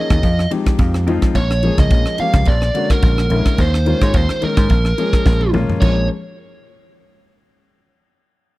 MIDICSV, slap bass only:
0, 0, Header, 1, 3, 480
1, 0, Start_track
1, 0, Tempo, 557103
1, 1171, Time_signature, 4, 2, 24, 8
1, 7393, End_track
2, 0, Start_track
2, 0, Title_t, "Slap bass"
2, 0, Program_c, 0, 36
2, 88, Note_on_c, 0, 39, 79
2, 179, Note_off_c, 0, 39, 0
2, 198, Note_on_c, 0, 41, 96
2, 392, Note_off_c, 0, 41, 0
2, 679, Note_on_c, 0, 41, 85
2, 873, Note_off_c, 0, 41, 0
2, 917, Note_on_c, 0, 41, 76
2, 1026, Note_off_c, 0, 41, 0
2, 1159, Note_on_c, 0, 34, 88
2, 1456, Note_off_c, 0, 34, 0
2, 1536, Note_on_c, 0, 37, 75
2, 1625, Note_off_c, 0, 37, 0
2, 1643, Note_on_c, 0, 34, 84
2, 1750, Note_off_c, 0, 34, 0
2, 2012, Note_on_c, 0, 37, 78
2, 2102, Note_off_c, 0, 37, 0
2, 2125, Note_on_c, 0, 34, 88
2, 2317, Note_off_c, 0, 34, 0
2, 2607, Note_on_c, 0, 34, 86
2, 2798, Note_off_c, 0, 34, 0
2, 2849, Note_on_c, 0, 34, 79
2, 2954, Note_off_c, 0, 34, 0
2, 3086, Note_on_c, 0, 39, 93
2, 3381, Note_off_c, 0, 39, 0
2, 3458, Note_on_c, 0, 44, 80
2, 3546, Note_off_c, 0, 44, 0
2, 3568, Note_on_c, 0, 39, 84
2, 3673, Note_off_c, 0, 39, 0
2, 3939, Note_on_c, 0, 44, 80
2, 4026, Note_off_c, 0, 44, 0
2, 4050, Note_on_c, 0, 34, 86
2, 4240, Note_off_c, 0, 34, 0
2, 4529, Note_on_c, 0, 34, 79
2, 4719, Note_off_c, 0, 34, 0
2, 4769, Note_on_c, 0, 34, 70
2, 4874, Note_off_c, 0, 34, 0
2, 5009, Note_on_c, 0, 34, 88
2, 5234, Note_off_c, 0, 34, 0
2, 7393, End_track
3, 0, Start_track
3, 0, Title_t, "Muted slap bass strokes"
3, 573, Note_on_c, 9, 29, 36
3, 659, Note_off_c, 9, 29, 0
3, 1886, Note_on_c, 9, 29, 37
3, 1972, Note_off_c, 9, 29, 0
3, 2498, Note_on_c, 9, 29, 33
3, 2584, Note_off_c, 9, 29, 0
3, 3819, Note_on_c, 9, 29, 35
3, 3905, Note_off_c, 9, 29, 0
3, 4416, Note_on_c, 9, 29, 36
3, 4502, Note_off_c, 9, 29, 0
3, 7393, End_track
0, 0, End_of_file